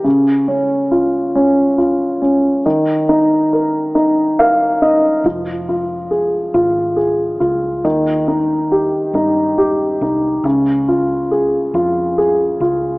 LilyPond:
<<
  \new Staff \with { instrumentName = "Upright piano" } { \time 6/8 \key ees \mixolydian \tempo 4. = 46 des8 des'8 f'8 des'8 f'8 des'8 | ees8 ees'8 bes'8 ees'8 <bes' f''>8 <ees' ees''>8 | f8 f'8 aes'8 f'8 aes'8 f'8 | ees8 ees'8 g'8 ees'8 g'8 ees'8 |
des8 f'8 aes'8 f'8 aes'8 f'8 | }
  \new Staff \with { instrumentName = "Fingered electric bass" } { \clef bass \time 6/8 \key ees \mixolydian r2. | r2. | f,,4. aes,,4 des,8 | ees,4. g,4 c,8 |
des,4. f,4 des,8 | }
>>